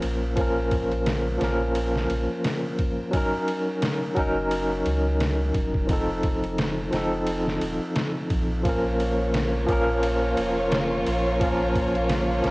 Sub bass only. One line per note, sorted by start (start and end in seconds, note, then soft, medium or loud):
0.03 1.38 A#1 medium
1.41 2.07 A#1 medium
2.10 2.27 A#1 medium
4.17 4.83 F#1 loud
4.86 5.52 C#2 medium
5.55 6.90 F1 medium
6.92 7.59 F1 loud
7.61 7.79 D#1 loud
8.31 9.66 A#1 medium
9.69 10.35 A#1 medium
10.38 11.04 F1 medium
11.06 12.42 A#1 medium
12.45 12.51 A#1 loud